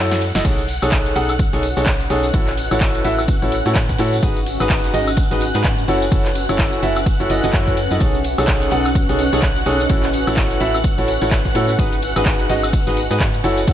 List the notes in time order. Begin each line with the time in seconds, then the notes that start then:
Already playing: F#2 E4 F#4 A4 C#5 F#5 F#6
0.11 snare, closed hi-hat, tambourine, shaker
0.21 snare, open hi-hat, ride
0.35 F#1 E4 F#4 A4 D#5, snare, closed hi-hat, tambourine, shaker
0.45 B1 C#4 D#4 G#4 A4 C#5 F#5 F#6, kick, closed hi-hat, crash, ride, tambourine, shaker
0.59 closed hi-hat, tambourine, shaker
0.68 B4, open hi-hat, ride
0.72 F#4
0.82 B1 D#4 G#4 A4 C#5, closed hi-hat, tambourine, high woodblock, shaker
0.92 kick, snare, clap, closed hi-hat, ride, tambourine, shaker
1.06 snare, closed hi-hat, tambourine, shaker
1.16 B1 D#4 G#4 A4 F#5, open hi-hat, ride
1.29 closed hi-hat, tambourine, high woodblock, shaker
1.39 kick, closed hi-hat, ride, tambourine, shaker
1.53 B1 D#4 G#4 A4 C#5, snare, closed hi-hat, tambourine, shaker
1.63 open hi-hat, ride
1.77 B1 D#4 G#4 A4 C#5, snare, closed hi-hat, tambourine, shaker
1.86 kick, snare, clap, closed hi-hat, ride, tambourine, shaker
2.00 closed hi-hat, tambourine, shaker
2.10 B1 D#4 G#4 A4 C#5, open hi-hat
2.23 closed hi-hat, tambourine, shaker
2.33 A1 E4 F#4 A4 C#5, kick, closed hi-hat, ride, tambourine, shaker
2.47 snare, clap, closed hi-hat, tambourine, shaker
2.57 open hi-hat, ride
2.71 A1 E4 F#4 A4 C#5, closed hi-hat, tambourine, high woodblock, shaker
2.80 kick, snare, clap, closed hi-hat, ride, tambourine, shaker
2.95 closed hi-hat, tambourine, shaker
3.04 A1 E4 F#4 A4 E5, open hi-hat, ride
3.19 closed hi-hat, tambourine, high woodblock, shaker
3.28 kick, closed hi-hat, ride, tambourine, shaker
3.42 A1 E4 F#4 A4 C#5, closed hi-hat, tambourine, shaker
3.52 open hi-hat, ride
3.66 A2 E4 F#4 A4 C#5, closed hi-hat, tambourine, shaker
3.75 kick, snare, clap, closed hi-hat, ride, tambourine, shaker
3.89 kick, closed hi-hat, tambourine, shaker
3.98 A2 E4 F#4 A4 C#5, snare, open hi-hat, ride
4.13 closed hi-hat, tambourine, shaker
4.23 G#1 D#4 F#4 G#4 B4, kick, closed hi-hat, ride, tambourine, shaker
4.37 closed hi-hat, tambourine, shaker
4.46 open hi-hat, ride
4.60 G#1 D#4 F#4 G#4 B4, closed hi-hat, tambourine, high woodblock, shaker
4.69 kick, snare, clap, closed hi-hat, ride, tambourine, shaker
4.84 snare, closed hi-hat, tambourine, shaker
4.94 G#1 D#4 F#4 G#4 D#5, open hi-hat, ride
5.07 closed hi-hat, tambourine, high woodblock, shaker
5.17 kick, closed hi-hat, ride, tambourine, shaker
5.31 G#1 D#4 F#4 G#4 B4, snare, closed hi-hat, tambourine, shaker
5.41 open hi-hat, ride
5.54 G#2 D#4 F#4 G#4 B4, snare, closed hi-hat, tambourine, shaker
5.64 kick, snare, clap, closed hi-hat, ride, tambourine, shaker
5.78 closed hi-hat, tambourine, shaker
5.88 F#1 E4 F#4 A4 C#5, open hi-hat
6.02 closed hi-hat, tambourine, shaker
6.12 F#1 E4 F#4 A4 C#5, kick, closed hi-hat, ride, tambourine, shaker
6.25 snare, clap, closed hi-hat, tambourine, shaker
6.35 open hi-hat, ride
6.49 F#1 E4 F#4 A4 C#5, closed hi-hat, tambourine, high woodblock, shaker
6.53 E5
6.58 kick, snare, clap, closed hi-hat, ride, tambourine, shaker
6.73 closed hi-hat, tambourine, shaker
6.83 F#1 E4 F#4 A4 E5, open hi-hat, ride
6.96 closed hi-hat, tambourine, high woodblock, shaker
7.06 kick, closed hi-hat, ride, tambourine, shaker
7.20 F#1 E4 F#4 A4 C#5, closed hi-hat, tambourine, shaker
7.29 F#1 E4 F#4 A4 D#5, open hi-hat, ride
7.44 F#1 E4 F#4 A4 D#5, closed hi-hat, tambourine, shaker
7.53 F#2 E4 F#4 A4 C#5, kick, snare, clap, closed hi-hat, ride, shaker
7.67 kick, closed hi-hat, tambourine, shaker
7.77 snare, open hi-hat, ride
7.91 F#2 E4 F#4 A4 D#5, closed hi-hat, tambourine, shaker
8.00 B1 D#4 G#4 A4 C#5, kick, closed hi-hat, ride, tambourine, shaker
8.15 closed hi-hat, tambourine, shaker
8.24 open hi-hat, ride
8.38 B1 D#4 G#4 A4 C#5, closed hi-hat, tambourine, high woodblock, shaker
8.47 D#5, kick, snare, clap, closed hi-hat, ride, tambourine, shaker
8.61 snare, closed hi-hat, tambourine, shaker
8.71 B1 D#4 G#4 A4 F#5, open hi-hat, ride
8.85 closed hi-hat, tambourine, high woodblock, shaker
8.95 kick, closed hi-hat, ride, tambourine, shaker
9.09 B1 D#4 G#4 A4 C#5, snare, closed hi-hat, tambourine, shaker
9.18 open hi-hat, ride
9.33 B1 D#4 G#4 A4 C#5, snare, closed hi-hat, tambourine, shaker
9.42 kick, snare, clap, closed hi-hat, ride, shaker
9.56 closed hi-hat, tambourine, shaker
9.66 B1 D#4 G#4 A4 C#5, open hi-hat
9.80 closed hi-hat, tambourine, shaker
9.89 A1 E4 F#4 A4 C#5, kick, closed hi-hat, ride, tambourine, shaker
10.03 snare, clap, closed hi-hat, tambourine, shaker
10.13 open hi-hat, ride
10.27 A1 E4 F#4 A4 C#5 E5, closed hi-hat, tambourine, high woodblock, shaker
10.36 kick, snare, clap, closed hi-hat, ride, tambourine, shaker
10.51 closed hi-hat, tambourine, shaker
10.60 A1 E4 F#4 A4 E5, open hi-hat, ride
10.74 closed hi-hat, tambourine, high woodblock, shaker
10.84 kick, closed hi-hat, ride, tambourine, shaker
10.98 A1 E4 F#4 A4 C#5, closed hi-hat, tambourine, shaker
11.08 open hi-hat, ride
11.21 A1 E4 F#4 A4 C#5, closed hi-hat, tambourine, shaker
11.31 kick, snare, clap, closed hi-hat, ride, tambourine, shaker
11.45 kick, closed hi-hat, tambourine, shaker
11.55 A2 E4 F#4 A4 C#5, snare, open hi-hat, ride
11.68 closed hi-hat, tambourine, shaker
11.79 G#1 D#4 F#4 G#4 B4, kick, closed hi-hat, ride, tambourine, shaker
11.93 closed hi-hat, tambourine, shaker
12.02 open hi-hat, ride
12.16 G#1 D#4 F#4 G#4 B4, closed hi-hat, tambourine, high woodblock, shaker
12.25 kick, snare, clap, closed hi-hat, ride, tambourine, shaker
12.39 snare, closed hi-hat, tambourine, shaker
12.50 G#1 D#4 F#4 G#4 D#5, open hi-hat, ride
12.63 closed hi-hat, tambourine, high woodblock, shaker
12.73 kick, closed hi-hat, ride, tambourine, shaker
12.87 G#1 D#4 F#4 G#4 B4, snare, closed hi-hat, tambourine, shaker
12.97 open hi-hat, ride
13.10 G#2 D#4 F#4 G#4 B4, snare, closed hi-hat, tambourine, shaker
13.20 kick, snare, clap, closed hi-hat, ride, tambourine, shaker
13.34 closed hi-hat, tambourine, shaker
13.44 F#1 E4 F#4 A4 C#5, open hi-hat
13.57 closed hi-hat, tambourine, shaker
13.67 F#1 E4 F#4 A4 C#5, kick, closed hi-hat, ride, tambourine, shaker